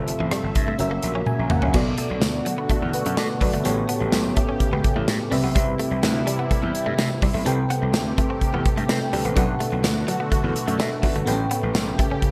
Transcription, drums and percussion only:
0.08 closed hi-hat
0.31 cross-stick, closed hi-hat
0.55 kick, closed hi-hat
0.79 closed hi-hat
1.02 closed hi-hat
1.26 high tom
1.50 mid tom
1.62 floor tom
1.74 kick, crash
1.98 closed hi-hat
2.22 snare, closed hi-hat, tambourine
2.46 closed hi-hat
2.70 kick, closed hi-hat
2.93 closed hi-hat
3.06 closed hi-hat
3.17 snare, closed hi-hat, tambourine
3.41 kick, open hi-hat
3.53 closed hi-hat
3.65 closed hi-hat
3.89 closed hi-hat
4.12 snare, closed hi-hat, tambourine
4.36 kick, closed hi-hat
4.60 kick, closed hi-hat
4.84 kick, closed hi-hat
5.08 snare, closed hi-hat, tambourine
5.32 open hi-hat
5.56 kick, closed hi-hat
5.79 closed hi-hat
6.03 snare, closed hi-hat, tambourine
6.27 closed hi-hat
6.51 kick, closed hi-hat
6.75 closed hi-hat
6.98 snare, closed hi-hat, tambourine
7.22 kick, open hi-hat
7.46 closed hi-hat
7.70 closed hi-hat
7.93 snare, closed hi-hat, tambourine
8.18 kick, closed hi-hat
8.41 kick, closed hi-hat
8.65 kick, closed hi-hat
8.78 closed hi-hat
8.89 snare, closed hi-hat, tambourine
9.13 open hi-hat
9.25 closed hi-hat
9.37 kick, closed hi-hat
9.60 closed hi-hat
9.84 snare, closed hi-hat, tambourine
10.08 closed hi-hat
10.32 kick, closed hi-hat
10.56 closed hi-hat
10.68 closed hi-hat
10.79 snare, closed hi-hat, tambourine
11.03 kick, open hi-hat
11.15 closed hi-hat
11.27 closed hi-hat
11.51 closed hi-hat
11.75 snare, closed hi-hat, tambourine
11.99 kick, closed hi-hat
12.22 kick, closed hi-hat

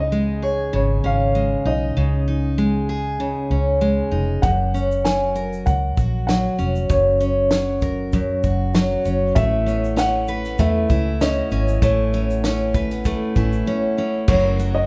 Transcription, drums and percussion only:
4.43 kick, shaker
4.75 shaker
4.91 shaker
5.05 snare, shaker
5.36 shaker
5.53 shaker
5.66 kick, shaker
5.97 kick, shaker
6.29 snare, shaker
6.59 shaker
6.75 shaker
6.90 kick, shaker
7.21 shaker
7.51 snare, shaker
7.82 kick, shaker
8.13 kick, shaker
8.43 kick, shaker
8.74 snare, shaker
9.05 shaker
9.36 kick, shaker
9.68 shaker
9.84 shaker
9.97 snare, shaker
10.28 shaker
10.45 shaker
10.58 kick, shaker
10.90 kick, shaker
11.21 snare, shaker
11.51 shaker
11.68 shaker
11.82 kick, shaker
12.14 shaker
12.30 shaker
12.44 snare, shaker
12.74 kick, shaker
12.91 shaker
13.05 kick, shaker
13.36 kick, shaker
13.53 shaker
14.28 kick, crash
14.59 shaker

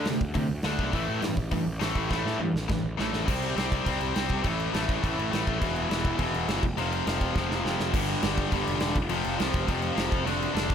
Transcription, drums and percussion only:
0.05 snare, open hi-hat
0.21 kick
0.34 kick, open hi-hat
0.63 snare, open hi-hat
0.79 kick
0.93 kick, open hi-hat
1.22 snare, open hi-hat
1.37 kick
1.51 kick, open hi-hat
1.81 snare, open hi-hat
1.96 kick
2.11 kick, snare
2.27 snare
2.56 snare
2.70 kick, snare
2.99 snare
3.13 snare
3.28 kick, crash
3.42 crash
3.58 snare, crash
3.72 kick, crash
3.86 kick, crash
4.01 crash
4.16 snare, crash
4.29 kick, crash
4.44 kick, crash
4.60 crash
4.74 snare, crash
4.89 kick, crash
5.04 kick, crash
5.19 crash
5.33 snare, crash
5.47 kick, crash
5.62 kick, crash
5.76 crash
5.91 snare, crash
6.05 kick, crash
6.19 kick, crash
6.34 crash
6.48 snare, crash
6.63 kick, crash
6.78 crash
6.93 crash
7.07 snare, crash
7.21 kick, crash
7.36 kick, snare
7.51 snare
7.66 snare
7.80 snare
7.94 kick, crash
8.07 crash
8.22 snare, crash
8.38 kick, crash
8.52 kick, crash
8.67 crash
8.80 snare, crash
8.96 kick, crash
9.09 crash
9.24 crash
9.40 snare, crash
9.54 kick, crash
9.68 kick, crash
9.82 crash
9.97 snare, crash
10.12 kick, crash
10.27 crash
10.43 crash
10.56 snare, crash
10.70 kick, crash

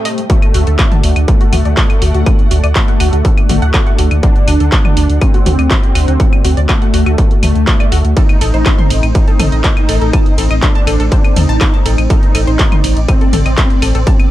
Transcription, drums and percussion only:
0.05 open hi-hat
0.18 closed hi-hat
0.30 kick, closed hi-hat
0.42 closed hi-hat, claves
0.54 open hi-hat
0.67 closed hi-hat
0.79 kick, clap, closed hi-hat, claves
0.92 closed hi-hat, mid tom
1.03 open hi-hat
1.16 closed hi-hat, claves
1.28 kick, closed hi-hat
1.41 closed hi-hat
1.53 open hi-hat, mid tom, claves
1.65 closed hi-hat
1.77 kick, clap, closed hi-hat
1.90 closed hi-hat, claves
2.02 open hi-hat
2.14 closed hi-hat
2.26 kick, closed hi-hat, claves
2.39 closed hi-hat
2.51 open hi-hat
2.64 closed hi-hat, claves
2.76 kick, clap, closed hi-hat
2.88 closed hi-hat
3.00 open hi-hat, claves
3.13 closed hi-hat
3.25 kick, closed hi-hat
3.37 closed hi-hat, claves
3.49 open hi-hat, mid tom
3.62 closed hi-hat
3.74 kick, clap, closed hi-hat, claves
3.87 closed hi-hat
3.99 open hi-hat
4.11 closed hi-hat, claves
4.23 kick, closed hi-hat
4.36 closed hi-hat
4.48 open hi-hat, claves
4.60 closed hi-hat
4.72 kick, clap, closed hi-hat
4.85 closed hi-hat, mid tom, claves
4.97 open hi-hat
5.10 closed hi-hat
5.21 kick, closed hi-hat, claves
5.34 closed hi-hat
5.46 open hi-hat, mid tom
5.59 closed hi-hat, claves
5.71 kick, clap, closed hi-hat
5.83 closed hi-hat
5.95 open hi-hat, claves
6.08 closed hi-hat
6.20 kick, closed hi-hat
6.33 closed hi-hat, claves
6.45 open hi-hat
6.57 closed hi-hat
6.69 kick, clap, closed hi-hat, claves
6.82 closed hi-hat
6.94 open hi-hat
7.06 closed hi-hat, claves
7.18 kick, closed hi-hat
7.31 closed hi-hat
7.43 open hi-hat, mid tom, claves
7.55 closed hi-hat
7.67 kick, clap, closed hi-hat
7.80 closed hi-hat, claves
7.92 open hi-hat
8.05 closed hi-hat
8.17 kick, closed hi-hat, ride
8.29 closed hi-hat, claves
8.41 open hi-hat, ride
8.54 closed hi-hat
8.66 kick, clap, closed hi-hat, ride, claves
8.79 closed hi-hat, mid tom
8.90 open hi-hat, ride
9.03 closed hi-hat, claves
9.15 kick, closed hi-hat, ride
9.28 closed hi-hat
9.40 open hi-hat, mid tom, ride, claves
9.52 closed hi-hat
9.64 kick, clap, closed hi-hat, ride
9.77 closed hi-hat, claves
9.89 open hi-hat, ride
10.01 closed hi-hat
10.13 kick, closed hi-hat, ride, claves
10.26 closed hi-hat
10.38 open hi-hat, ride
10.51 closed hi-hat, claves
10.63 kick, clap, closed hi-hat, ride
10.75 closed hi-hat
10.87 open hi-hat, ride, claves
11.00 closed hi-hat
11.12 kick, closed hi-hat, ride
11.24 closed hi-hat, claves
11.36 open hi-hat, mid tom, ride
11.49 closed hi-hat
11.61 kick, clap, closed hi-hat, ride, claves
11.74 closed hi-hat
11.86 open hi-hat, ride
11.98 closed hi-hat, claves
12.10 kick, closed hi-hat, ride
12.23 closed hi-hat
12.35 open hi-hat, ride, claves
12.47 closed hi-hat
12.59 kick, clap, closed hi-hat, ride
12.72 closed hi-hat, mid tom, claves
12.84 open hi-hat, ride
12.97 closed hi-hat
13.08 kick, closed hi-hat, ride, claves
13.21 closed hi-hat
13.33 open hi-hat, mid tom, ride
13.46 closed hi-hat, claves
13.58 kick, clap, closed hi-hat, ride
13.70 closed hi-hat
13.82 open hi-hat, ride, claves
13.95 closed hi-hat
14.07 kick, closed hi-hat, ride
14.20 closed hi-hat, claves

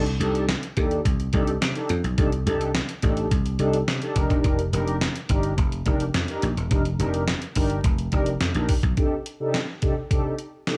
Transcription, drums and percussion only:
0.06 closed hi-hat
0.21 closed hi-hat
0.35 closed hi-hat
0.49 snare, closed hi-hat
0.63 closed hi-hat
0.77 kick, closed hi-hat
0.91 closed hi-hat
1.05 kick, closed hi-hat
1.20 closed hi-hat
1.33 kick, closed hi-hat
1.47 closed hi-hat
1.62 snare, closed hi-hat
1.75 closed hi-hat
1.89 closed hi-hat
2.04 closed hi-hat
2.18 kick, closed hi-hat
2.32 closed hi-hat
2.47 closed hi-hat
2.61 closed hi-hat
2.75 snare, closed hi-hat
2.89 closed hi-hat
3.02 kick, closed hi-hat
3.17 closed hi-hat
3.31 kick, closed hi-hat
3.46 closed hi-hat
3.59 closed hi-hat
3.73 closed hi-hat
3.88 snare, closed hi-hat
4.02 closed hi-hat
4.16 kick, closed hi-hat
4.30 kick, closed hi-hat
4.44 kick, closed hi-hat
4.59 closed hi-hat
4.73 closed hi-hat
4.88 closed hi-hat
5.01 snare, closed hi-hat
5.16 closed hi-hat
5.29 kick, closed hi-hat
5.43 closed hi-hat
5.58 kick, closed hi-hat
5.72 closed hi-hat
5.86 kick, closed hi-hat
6.00 closed hi-hat
6.14 snare, closed hi-hat
6.28 closed hi-hat
6.42 closed hi-hat
6.57 closed hi-hat
6.71 kick, closed hi-hat
6.85 closed hi-hat
7.00 closed hi-hat
7.14 closed hi-hat
7.28 snare, closed hi-hat
7.42 closed hi-hat
7.55 kick, open hi-hat
7.70 closed hi-hat
7.84 kick, closed hi-hat
7.98 closed hi-hat
8.12 kick, closed hi-hat
8.26 closed hi-hat
8.41 snare, closed hi-hat
8.54 closed hi-hat
8.69 kick, open hi-hat
8.83 kick, closed hi-hat
8.97 kick, closed hi-hat
9.26 closed hi-hat
9.54 snare, closed hi-hat
9.82 kick, closed hi-hat
10.11 kick, closed hi-hat
10.39 closed hi-hat
10.67 snare, closed hi-hat

